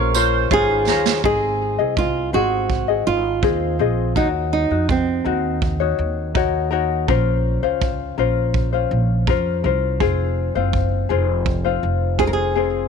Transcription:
0.00 0.47 A#1 medium
0.00 1.31 C#4 medium
0.00 0.15 F4 medium
0.00 0.15 A#4 medium
0.00 0.48 A#4 medium
0.00 0.16 C5 medium
0.00 0.14 C#5 medium
0.15 0.51 F4 medium
0.15 0.51 A#4 medium
0.15 1.82 C5 medium
0.15 0.52 C5 medium
0.15 0.50 C#5 medium
0.15 tambourine medium
0.51 0.85 G#1 medium
0.51 1.32 F4 medium
0.51 0.88 F4 medium
0.51 1.21 G#4 loud
0.51 0.88 A#4 medium
0.51 0.89 C5 medium
0.51 0.87 C#5 medium
0.51 kick loud
0.87 1.21 D#2 medium
0.87 1.24 F4 medium
0.87 1.25 A#4 medium
0.87 1.23 C5 medium
0.87 1.24 C#5 medium
0.87 1.31 A#5 medium
0.87 snare medium
1.06 snare loud
1.24 1.75 G#1 medium
1.24 1.79 C4 medium
1.24 1.78 G#4 medium
1.24 1.94 G#4 medium
1.24 1.79 C5 medium
1.24 1.77 D#5 medium
1.24 kick loud
1.78 2.30 C2 medium
1.78 2.33 C4 soft
1.78 2.33 G#4 soft
1.78 2.33 D#5 soft
1.97 2.32 F4 medium
1.97 kick loud
2.33 3.02 G#1 medium
2.33 2.88 C4 medium
2.33 3.06 F#4 medium
2.33 2.88 G#4 medium
2.33 2.88 C5 soft
2.33 2.87 D#5 medium
2.70 kick medium
2.88 3.42 C4 soft
2.88 3.42 G#4 soft
2.88 3.42 D#5 soft
3.07 3.40 G#1 medium
3.07 4.19 F4 medium
3.42 3.77 D#2 medium
3.42 3.78 C4 medium
3.42 3.79 G#4 medium
3.42 3.78 C5 medium
3.42 3.80 D#5 medium
3.42 kick loud
3.79 4.13 A#1 medium
3.79 4.16 C4 medium
3.79 4.16 G#4 medium
3.79 4.15 C5 soft
3.79 4.16 D#5 medium
4.15 4.67 D#2 medium
4.15 4.71 D#4 medium
4.15 4.27 D#4 medium
4.15 4.70 F#4 medium
4.15 4.71 A#4 medium
4.15 4.71 C#5 medium
4.15 kick medium
4.53 4.90 D#4 medium
4.71 5.21 F2 medium
4.71 5.24 D#4 soft
4.71 5.25 F#4 soft
4.89 5.59 C4 medium
4.89 kick loud
5.24 5.95 D#2 medium
5.24 5.80 D#4 medium
5.24 5.80 F#4 medium
5.24 5.80 A#4 soft
5.62 kick loud
5.80 6.34 D#4 medium
5.80 6.35 F#4 soft
5.80 6.35 C#5 medium
5.99 7.04 D#2 medium
6.35 6.70 D#4 medium
6.35 6.71 F#4 medium
6.35 6.69 A#4 medium
6.35 6.72 C#5 medium
6.35 kick loud
6.71 7.08 D#4 medium
6.71 7.08 F#4 medium
6.71 7.07 A#4 medium
6.71 7.09 C#5 medium
7.08 7.59 A#1 loud
7.08 7.63 C#4 medium
7.08 7.63 F4 medium
7.08 7.63 A#4 medium
7.08 7.62 C5 medium
7.08 kick loud
7.63 8.14 C#2 medium
7.63 8.17 C#4 soft
7.63 8.18 F4 medium
7.63 8.18 C5 medium
7.81 kick loud
8.18 8.87 A#1 medium
8.18 8.73 C#4 medium
8.18 8.73 F4 medium
8.18 8.72 A#4 medium
8.18 8.71 C5 medium
8.54 kick medium
8.73 9.27 C#4 soft
8.73 9.28 F4 soft
8.73 9.27 C5 medium
8.91 9.25 A#1 medium
9.27 9.61 F2 medium
9.27 9.63 C#4 medium
9.27 9.64 F4 medium
9.27 9.63 A#4 medium
9.27 9.64 C5 medium
9.27 kick medium
9.64 9.97 C2 medium
9.64 10.00 C#4 medium
9.64 10.00 F4 medium
9.64 10.00 A#4 medium
9.64 10.00 C5 medium
10.00 10.51 F1 medium
10.00 10.55 C4 medium
10.00 10.55 F4 medium
10.00 10.55 G#4 medium
10.00 10.54 C5 medium
10.00 kick medium
10.55 11.06 F#1 medium
10.55 11.09 C4 soft
10.55 11.09 F4 medium
10.55 11.10 C5 medium
10.73 kick medium
11.09 11.79 F1 medium
11.09 11.65 C4 medium
11.09 11.64 F4 medium
11.09 11.64 G#4 medium
11.09 11.63 C5 medium
11.46 kick loud
11.64 12.18 C4 soft
11.64 12.19 F4 medium
11.64 12.19 C5 medium
11.83 12.88 F1 medium
12.18 12.55 C4 medium
12.18 12.55 F4 medium
12.18 12.54 G#4 medium
12.18 12.26 G#4 medium
12.18 12.56 C5 medium
12.18 kick loud
12.27 12.33 A#4 medium
12.33 12.88 G#4 medium
12.55 12.88 C4 medium
12.55 12.88 F4 medium
12.55 12.88 G#4 soft
12.55 12.88 C5 medium

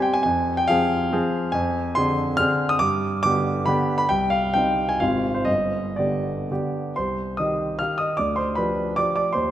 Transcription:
0.00 0.22 G3 medium
0.00 0.22 C4 medium
0.00 0.22 G4 medium
0.00 0.14 G5 medium
0.13 0.21 G#5 loud
0.23 0.68 F2 medium
0.23 0.57 G#5 loud
0.57 0.69 G5 loud
0.68 1.08 F3 medium
0.68 1.09 C4 medium
0.68 1.09 G#4 medium
0.68 1.52 F5 loud
1.13 1.49 F3 medium
1.13 1.49 C4 medium
1.13 1.50 G#4 medium
1.52 1.95 F2 medium
1.52 1.95 G#5 loud
1.95 2.35 D3 medium
1.95 2.35 C4 medium
1.95 2.35 G#4 medium
1.95 2.38 C6 loud
2.37 2.76 D3 medium
2.37 2.76 C4 medium
2.37 2.76 G#4 medium
2.37 2.68 F6 loud
2.69 2.79 D#6 loud
2.79 3.22 G2 medium
2.79 3.21 D6 loud
3.23 3.64 D3 medium
3.23 3.64 B3 medium
3.23 3.64 G4 medium
3.23 3.67 D6 loud
3.66 4.05 D3 medium
3.66 4.06 B3 medium
3.66 4.05 G4 medium
3.66 3.96 B5 loud
3.98 4.09 B5 loud
4.09 4.53 C2 medium
4.09 4.31 G5 loud
4.30 4.53 F5 loud
4.54 4.97 C3 medium
4.54 4.97 C4 medium
4.54 4.98 D#4 medium
4.54 4.89 G5 loud
4.89 5.00 G#5 medium
5.00 5.46 G#1 medium
5.00 5.44 C3 soft
5.00 5.44 C4 soft
5.00 5.44 F4 soft
5.00 5.35 F5 medium
5.34 5.47 C5 medium
5.45 5.96 G1 medium
5.45 5.97 D#5 medium
5.96 6.46 D3 soft
5.96 6.46 B3 soft
5.96 6.46 G4 medium
5.96 6.49 D5 medium
6.51 6.93 D3 medium
6.51 6.93 B3 medium
6.51 6.93 G4 medium
6.96 7.38 C2 soft
6.96 7.36 C5 medium
6.96 7.38 C6 medium
7.37 7.76 D#3 soft
7.37 7.76 D#4 soft
7.37 7.77 G4 soft
7.37 7.77 D#5 medium
7.37 7.79 D#6 medium
7.79 8.14 D#3 soft
7.79 8.15 D#4 soft
7.79 8.15 G4 soft
7.79 7.97 F5 medium
7.79 7.98 F6 medium
7.98 8.17 D#5 medium
7.98 8.17 D#6 medium
8.17 8.56 D2 soft
8.17 8.36 D5 medium
8.17 8.36 D6 medium
8.36 8.56 C5 medium
8.36 8.56 C6 medium
8.55 8.93 F3 soft
8.55 8.93 D4 soft
8.55 8.93 G4 soft
8.55 8.94 B4 medium
8.55 8.96 B5 medium
8.96 9.31 F3 soft
8.96 9.31 D4 soft
8.96 9.31 G4 soft
8.96 9.15 D5 medium
8.96 9.14 D6 medium
9.16 9.33 D5 medium
9.16 9.34 D6 medium
9.33 9.51 D#2 medium
9.33 9.51 C5 medium
9.33 9.51 C6 medium

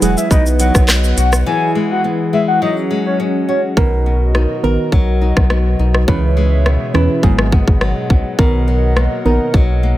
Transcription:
0.00 0.16 E1 loud
0.00 0.30 E3 medium
0.00 0.37 E3 medium
0.00 0.29 F#3 medium
0.00 0.37 G#3 medium
0.00 0.89 B3 medium
0.00 0.30 E4 medium
0.00 0.29 E4 medium
0.00 0.28 G#4 medium
0.00 0.29 G#4 medium
0.00 0.27 F#5 loud
0.00 0.15 F#5 medium
0.00 closed hi-hat medium
0.00 shaker medium
0.17 0.29 E5 medium
0.17 shaker medium
0.31 0.71 B1 loud
0.31 1.53 B2 medium
0.31 1.37 F#3 medium
0.31 1.45 B3 medium
0.31 1.38 D#4 medium
0.31 1.45 B4 medium
0.31 1.38 B4 loud
0.31 1.45 D#5 medium
0.31 0.44 D#5 medium
0.31 2.59 F#5 medium
0.31 kick medium
0.31 shaker medium
0.46 shaker medium
0.60 1.75 F#3 medium
0.60 0.73 F#5 medium
0.60 closed hi-hat medium
0.60 shaker soft
0.75 1.14 B1 medium
0.75 kick medium
0.75 cross-stick medium
0.75 shaker medium
0.88 1.53 B3 medium
0.88 cross-stick medium
0.88 clap medium
0.88 shaker medium
1.04 shaker medium
1.17 1.44 B1 medium
1.17 1.78 F#4 medium
1.17 1.30 F#5 medium
1.17 closed hi-hat medium
1.17 shaker soft
1.33 cross-stick medium
1.33 shaker medium
1.46 2.61 E3 medium
1.46 2.61 E4 medium
1.46 3.75 G#4 medium
1.46 1.70 G#5 loud
1.75 2.32 G#3 medium
1.91 2.02 F#5 medium
2.04 2.68 B3 medium
2.33 2.68 G#3 medium
2.33 2.46 E5 medium
2.48 2.59 F#5 medium
2.62 4.93 F#3 medium
2.62 3.76 F#3 medium
2.62 3.76 C#4 medium
2.62 2.74 D#5 medium
2.62 3.76 F#5 medium
2.91 3.83 G#3 medium
3.06 3.17 C#5 medium
3.20 3.83 C#4 medium
3.48 4.35 F#4 medium
3.48 3.61 C#5 medium
3.77 4.46 B1 loud
3.77 6.08 B2 medium
3.77 9.98 B2 medium
3.77 4.57 D#3 medium
3.77 4.57 B3 medium
3.77 6.06 F#4 medium
3.77 6.06 A#4 medium
3.77 4.57 A#4 loud
3.77 6.06 D#5 medium
3.77 kick loud
4.06 5.50 B3 medium
4.35 5.20 D#4 medium
4.35 cross-stick medium
4.63 4.78 A#1 medium
4.63 4.90 D#3 medium
4.63 4.90 B3 medium
4.63 4.90 A#4 medium
4.63 6.14 A#4 medium
4.92 5.33 B1 loud
4.92 6.14 F#3 medium
4.92 kick medium
5.22 5.78 D#4 medium
5.37 5.75 B1 medium
5.37 kick loud
5.37 cross-stick medium
5.50 6.65 B3 medium
5.50 cross-stick medium
5.79 6.05 B1 medium
5.79 6.14 D#4 medium
5.94 cross-stick medium
6.08 6.77 C#2 loud
6.08 7.29 C#3 medium
6.08 6.88 E3 medium
6.08 6.88 C#4 medium
6.08 8.36 G#4 medium
6.08 6.88 B4 loud
6.08 7.22 C#5 medium
6.08 7.22 E5 medium
6.08 kick loud
6.37 7.29 G#3 medium
6.66 7.52 B3 medium
6.66 cross-stick medium
6.94 7.08 E2 loud
6.94 7.21 E3 medium
6.94 7.21 C#4 medium
6.94 7.29 E4 medium
6.94 7.21 B4 medium
6.94 cross-stick medium
7.23 7.63 G#1 medium
7.23 8.39 G#2 medium
7.23 8.30 F#3 medium
7.23 8.30 B3 medium
7.23 8.30 G#4 loud
7.23 9.98 D#5 medium
7.23 9.98 F#5 medium
7.23 kick medium
7.39 cross-stick loud
7.52 8.10 B3 medium
7.52 kick medium
7.68 7.94 G#1 medium
7.68 kick medium
7.81 8.67 F#3 medium
7.81 cross-stick medium
8.10 8.24 A#1 medium
8.10 8.96 B3 medium
8.10 kick medium
8.39 9.08 B1 loud
8.39 9.98 B2 medium
8.39 9.19 D#3 loud
8.39 9.19 B3 medium
8.39 9.98 A#4 medium
8.39 9.19 A#4 loud
8.39 kick loud
8.68 9.53 F#3 medium
8.97 9.82 A#3 medium
8.97 cross-stick medium
9.25 9.39 A#1 medium
9.25 9.52 D#3 medium
9.25 9.52 B3 medium
9.25 9.98 D#4 medium
9.25 9.52 A#4 medium
9.54 9.94 B1 loud
9.54 9.98 F#3 medium
9.54 kick medium
9.83 9.98 A#3 medium

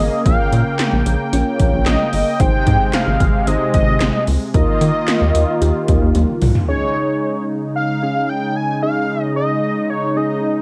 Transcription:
0.00 2.36 C#3 medium
0.00 2.36 A#3 medium
0.00 0.24 G#4 medium
0.00 0.22 D#5 medium
0.26 0.36 A#1 loud
0.26 0.94 C#4 medium
0.26 0.94 F4 medium
0.26 0.94 A#4 medium
0.26 0.75 F5 medium
0.26 4.50 G5 medium
0.26 kick loud
0.26 closed hi-hat medium
0.52 0.62 A#2 loud
0.52 closed hi-hat medium
0.79 snare loud
0.79 clap medium
0.79 closed hi-hat medium
0.93 1.03 A#1 loud
1.06 1.16 A#1 loud
1.06 closed hi-hat medium
1.33 1.43 A#1 loud
1.33 2.01 C#4 medium
1.33 2.01 F4 medium
1.33 2.01 C#5 loud
1.33 closed hi-hat medium
1.60 1.70 A#1 loud
1.60 kick medium
1.60 closed hi-hat medium
1.73 1.83 A#1 loud
1.86 1.96 A#1 loud
1.86 2.11 D#5 loud
1.86 snare loud
1.86 clap medium
1.86 closed hi-hat medium
2.13 2.23 G1 medium
2.13 2.42 D#5 loud
2.13 open hi-hat medium
2.40 2.50 G#1 loud
2.40 4.52 C3 medium
2.40 4.52 G#3 medium
2.40 3.08 D#4 medium
2.40 3.08 G#4 medium
2.40 3.08 C5 medium
2.40 2.95 G5 loud
2.40 kick loud
2.40 closed hi-hat medium
2.67 2.77 G#2 loud
2.67 kick loud
2.67 closed hi-hat medium
2.93 3.49 F5 loud
2.93 snare loud
2.93 clap loud
2.93 closed hi-hat medium
3.07 3.17 G#1 loud
3.20 3.30 G#1 loud
3.20 kick loud
3.20 closed hi-hat medium
3.47 3.57 G#1 loud
3.47 4.15 D#4 medium
3.47 4.15 G#4 medium
3.47 4.15 C5 medium
3.47 3.73 D#5 medium
3.47 closed hi-hat medium
3.74 3.84 G#1 loud
3.74 4.24 D#5 medium
3.74 kick medium
3.74 closed hi-hat medium
3.87 3.97 G#1 loud
4.00 4.11 G#1 loud
4.00 snare loud
4.00 clap medium
4.00 closed hi-hat medium
4.27 4.37 C#2 medium
4.27 open hi-hat medium
4.54 4.64 D#2 loud
4.54 6.66 D#3 medium
4.54 6.66 A#3 medium
4.54 5.23 D#4 medium
4.54 5.22 F4 medium
4.54 6.66 F4 medium
4.54 5.23 A#4 medium
4.54 6.11 D#5 loud
4.54 kick loud
4.54 closed hi-hat medium
4.81 4.91 D#3 loud
4.81 closed hi-hat medium
5.08 snare loud
5.08 clap loud
5.08 closed hi-hat medium
5.21 5.31 D#2 loud
5.35 5.45 D#2 loud
5.35 closed hi-hat medium
5.61 5.71 D#2 loud
5.61 6.30 D#4 medium
5.61 6.30 F4 medium
5.61 6.30 G4 loud
5.61 closed hi-hat medium
5.88 5.98 D#2 loud
5.88 kick medium
5.88 closed hi-hat medium
6.02 6.12 D#2 loud
6.15 6.25 D#2 loud
6.15 closed hi-hat medium
6.15 high tom medium
6.42 6.52 C2 loud
6.42 mid tom loud
6.42 open hi-hat medium
6.55 floor tom medium
6.68 10.62 C#3 medium
6.68 10.62 G#3 medium
6.68 7.37 C#4 medium
6.68 7.37 D#4 medium
6.68 10.62 D#4 medium
6.68 7.37 G#4 medium
6.68 7.45 C#5 loud
7.76 8.31 F5 loud
8.02 8.54 C#4 medium
8.02 8.54 D#4 medium
8.02 8.54 G#4 medium
8.29 8.57 G5 loud
8.56 8.82 G#5 loud
8.83 9.51 C#4 medium
8.83 9.51 D#4 medium
8.83 9.51 G#4 medium
8.83 9.32 F5 loud
9.36 9.91 D#5 loud
9.90 10.18 C#5 medium
10.17 10.62 C#4 medium
10.17 10.62 D#4 medium
10.17 10.62 G#4 medium
10.17 10.62 D#5 medium

